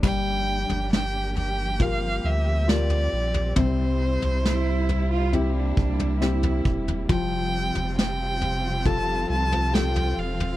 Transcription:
0.03 G1 F3 G3 A#3 D4 G4 G5, kick, floor tom, crash
0.69 G1, floor tom
0.93 G5, snare
1.36 G5, floor tom
1.80 C4 F4 G4 A#4 F5, kick, floor tom
2.24 D2 E5
2.68 F4 G4 A#4 D5, snare
2.90 floor tom
3.13 A#1
3.34 floor tom
3.56 C2 C3 E4 C5, kick, floor tom
4.22 C2, floor tom
4.45 E4, snare
4.89 floor tom
5.11 F4
5.33 A#3 C4 E4 G4, floor tom
5.56 D4
5.77 C2, kick
5.99 floor tom
6.21 C4 E4 G4, snare
6.43 floor tom
6.65 E1, kick
6.88 floor tom
7.09 F1 C3 F3 C4 F4 G5, kick, floor tom
7.75 F1, floor tom
7.98 G5, snare
8.41 floor tom
8.85 F4 G4 A4 A5, kick, floor tom
9.29 C2 A5
9.52 floor tom
9.74 F4 G4 A4 G5, snare
9.96 floor tom
10.17 E1 F5
10.40 floor tom

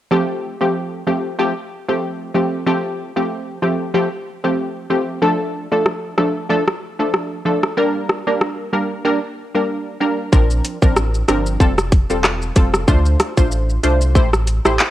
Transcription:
0.11 F3 A3 C4 G4
0.61 F3 A3 C4 G4
1.07 F3 A3 C4 G4
1.39 F3 A3 C4 G4
1.88 F3 A3 C4 G4
2.34 F3 A3 C4 G4
2.66 F3 A3 C4 G4
3.16 F3 A3 C4 G4
3.62 F3 A3 C4 G4
3.94 F3 A3 C4 G4
4.44 F3 A3 C4 G4
4.90 F3 A3 C4 G4
5.22 F3 A3 D4 A4
5.72 F3 A3 D4 A4
5.86 cross-stick
6.18 F3 A3 D4 A4, cross-stick
6.49 F3 A3 D4 A4
6.68 cross-stick
6.99 F3 A3 D4 A4
7.14 cross-stick
7.45 F3 A3 D4 A4
7.63 cross-stick
7.77 G3 A#3 D4 A#4
8.09 cross-stick
8.27 G3 A#3 D4 A#4
8.41 cross-stick
8.73 G3 A#3 D4 A#4
9.05 G3 A#3 D4 A#4
9.55 G3 A#3 D4 A#4
10.00 G3 A#3 D4 A#4
10.32 A#1 F3 C4 D4 A#4, kick, shaker
10.50 shaker
10.65 closed hi-hat, shaker
10.82 A1 F3 C4 D4 A#4, kick, shaker
10.96 cross-stick, shaker
11.14 shaker
11.28 G1 F3 C4 D4 A#4, cross-stick, closed hi-hat, shaker
11.46 shaker
11.60 F1 G3 C4 F4 A4, kick, shaker
11.78 cross-stick, shaker
11.92 kick, closed hi-hat, shaker
12.10 E1 G3 C4 F4 A4, shaker
12.24 cross-stick, clap, shaker
12.42 shaker
12.56 F1 G3 C4 F4 A4, kick, closed hi-hat, shaker
12.74 cross-stick, shaker
12.88 D2 A3 D4 F4 C5, kick, shaker
13.06 shaker
13.20 cross-stick, closed hi-hat, shaker
13.37 A1 A3 D4 F4 C5, kick, shaker
13.52 shaker
13.70 shaker
13.83 C2 A3 D4 F4 C5, closed hi-hat, shaker
14.01 shaker
14.15 A1 A3 E4 G4 C5, kick, shaker
14.33 cross-stick, shaker
14.47 closed hi-hat, shaker
14.65 A1 A3 E4 G4 C5, cross-stick, shaker
14.79 clap, shaker

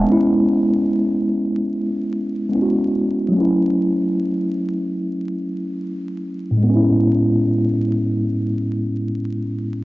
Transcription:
0.00 G#3 B3
0.08 C#4
0.12 E4
2.49 G#3 B3
2.54 C#4 E4
2.62 F#4
3.28 F#3 A3
3.36 C#4 E4
6.51 A2
6.57 G#3
6.63 B3
6.69 C#4
6.75 E4

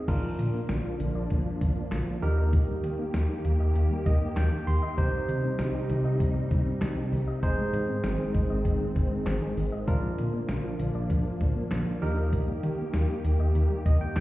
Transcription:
0.08 A#1 D3 F3 A#3 D4 F4 A#4, kick, closed hi-hat, crash
0.23 F3
0.39 A#2 D3, closed hi-hat
0.54 A#3
0.69 A#1 D3, snare, closed hi-hat
0.85 F4
1.00 A#1 D3, closed hi-hat
1.15 A#1 D5
1.30 A#1 D3, kick, closed hi-hat
1.46 F3
1.61 A#1 D3, kick, closed hi-hat
1.76 A#3
1.92 A#1 D3, snare, clap, closed hi-hat
2.07 F4
2.22 D#2 D#3 A#3 D#4 G4 A#4, open hi-hat
2.38 D#5
2.53 D#3, kick, closed hi-hat
2.68 G3
2.84 D#3, closed hi-hat
2.99 A#3
3.14 D#2 D#3, snare, closed hi-hat
3.29 G4
3.45 D#2 D#3, closed hi-hat
3.60 D#2 D#5
3.75 D#2 D#3, closed hi-hat
3.91 G3
4.06 D#2 D#3 D#5, kick, closed hi-hat
4.21 A#3
4.37 D#2 D#3 G5, snare, clap, closed hi-hat
4.52 G4
4.67 D#2 D#3 C6, open hi-hat
4.82 D#5
4.98 C2 C3 D#3 G3 D#4 G4 C5, kick, closed hi-hat
5.13 G3
5.28 C3 D#3, closed hi-hat
5.44 C4
5.59 C2 D#3, snare, closed hi-hat
5.74 G4
5.90 C2 D#3, closed hi-hat
6.05 C2 D#5
6.20 C2 D#3, kick, closed hi-hat
6.36 G3
6.51 C2 D#3, kick, closed hi-hat
6.66 C4
6.81 C2 D#3, snare, clap, closed hi-hat
6.97 G4
7.12 C2 D#3, open hi-hat
7.28 D#5
7.43 G#1 D#3 G#3 C4 D#4 G#4 C5, kick, closed hi-hat
7.58 G#3
7.73 G#2 D#3, closed hi-hat
7.89 C4
8.04 G#1 D#3, snare, closed hi-hat
8.19 G#4
8.34 G#1 D#3, kick, closed hi-hat
8.50 G#1 D#5
8.65 G#1 D#3, kick, closed hi-hat
8.81 G#3
8.96 G#1 D#3, kick, closed hi-hat
9.11 C4
9.26 G#1 D#3, snare, clap, closed hi-hat
9.42 G#4
9.57 G#1 D#3, open hi-hat
9.72 D#5
9.88 A#1 D3 F3 A#3 D4 F4 A#4, kick, closed hi-hat
10.03 F3
10.18 A#2 D3, closed hi-hat
10.34 A#3
10.49 A#1 D3, snare, closed hi-hat
10.64 F4
10.79 A#1 D3, closed hi-hat
10.95 A#1 D5
11.10 A#1 D3, kick, closed hi-hat
11.25 F3
11.41 A#1 D3, kick, closed hi-hat
11.56 A#3
11.71 A#1 D3, snare, clap, closed hi-hat
11.87 F4
12.02 D#2 D#3 D#4 G4 A#4, open hi-hat
12.17 D#5
12.33 D#3, kick, closed hi-hat
12.48 G3
12.63 D#3, closed hi-hat
12.79 A#3
12.94 D#2 D#3, snare, closed hi-hat
13.09 G4
13.24 D#2 D#3, closed hi-hat
13.40 D#2 D#5
13.55 D#2 D#3, closed hi-hat
13.70 G3
13.86 D#2 D#3 D#5, kick, closed hi-hat
14.01 A#3 G5
14.16 D#2 D#3 G5, snare, clap, closed hi-hat

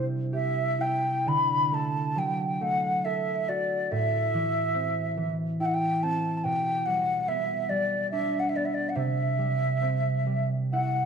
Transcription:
Already playing: C3 G3 D4 E4
0.33 G4 E5
0.79 E4 G5
1.26 D3 B5
1.72 A3 A5
2.16 F#3 G5
2.61 A3 F#5
3.05 A4 E5
3.49 F#4 D5
3.91 A2 E5
4.34 E3
4.74 C4
5.17 E3
5.60 E4 G5
5.65 F#5
5.74 G5
6.03 C4 A5
6.37 A5
6.44 B2 G5
6.86 G3 F#5
7.28 B3 E5
7.69 G3 D5
8.11 D4 E5
8.40 F#5
8.49 E5
8.55 B3 D5
8.65 E5
8.74 D5
8.89 F#5
8.96 C3 E5
9.39 G3
9.82 C4
10.26 G3
10.73 E4 F#5

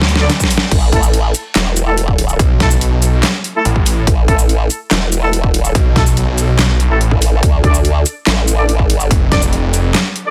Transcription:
Already playing: D2, noise sweep
0.02 snare
0.09 closed hi-hat
0.16 D4 A4 D5, snare
0.30 snare, closed hi-hat
0.40 kick, snare, shaker
0.51 open hi-hat, shaker
0.58 snare
0.72 A1, kick, closed hi-hat, crash
0.92 A1 A3 E4 A4, kick, closed hi-hat
1.03 shaker
1.14 closed hi-hat
1.35 closed hi-hat, shaker
1.55 E1, snare, clap, closed hi-hat
1.76 closed hi-hat, shaker
1.87 A3 E4 A4
1.98 closed hi-hat
2.08 kick
2.18 open hi-hat
2.29 shaker
2.39 B1, kick, closed hi-hat
2.60 A3 E4 A4, kick, snare, closed hi-hat
2.71 shaker
2.81 closed hi-hat
3.02 closed hi-hat, shaker
3.23 snare, clap, closed hi-hat
3.44 closed hi-hat
3.55 A3 E4 A4
3.65 A1, closed hi-hat
3.76 kick
3.86 open hi-hat, shaker
4.07 A1, kick, closed hi-hat
4.28 A1 A3 E4 A4, kick, closed hi-hat
4.39 shaker
4.49 closed hi-hat
4.70 closed hi-hat, shaker
4.91 E1, snare, clap, closed hi-hat
5.12 closed hi-hat, shaker
5.23 A3 E4 A4
5.33 closed hi-hat
5.44 kick
5.49 D#1
5.54 open hi-hat
5.65 shaker
5.75 B1, kick, closed hi-hat
5.96 A3 E4 A4, kick, snare, closed hi-hat
6.07 shaker
6.17 closed hi-hat
6.38 closed hi-hat, shaker
6.59 B1, snare, clap, closed hi-hat
6.80 closed hi-hat
6.90 A1 A3 E4 A4
7.01 closed hi-hat
7.11 A1, kick
7.22 open hi-hat, shaker
7.43 D2, kick, closed hi-hat
7.64 D2 D4 A4 D5, kick, closed hi-hat
7.74 shaker
7.85 closed hi-hat
8.06 closed hi-hat, shaker
8.27 A1, snare, clap, closed hi-hat
8.48 closed hi-hat, shaker
8.58 D4 A4 D5
8.69 closed hi-hat
8.79 kick
8.85 G#1
8.90 open hi-hat
9.00 shaker
9.11 F1, kick, closed hi-hat
9.32 D4 A4 D5, kick, snare, closed hi-hat
9.42 shaker
9.53 closed hi-hat
9.74 closed hi-hat, shaker
9.95 snare, clap, closed hi-hat
10.16 closed hi-hat
10.26 D4 A4 D5

